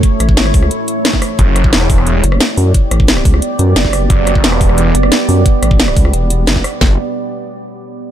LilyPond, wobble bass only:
\new Staff \with { instrumentName = "Wobble bass" } { \clef bass \time 4/4 \key g \lydian \tempo 4 = 177 r8 a,,4 cis,8 r2 | r2 r8 fis,,8 r8 fis,8 | r8 a,,4 cis,8 r8 fis,8 fis,,4 | r2 r8 fis,,8 r8 fis,8 |
r8 a,,4 cis,8 e,,4 fis,,8 r8 | r1 | }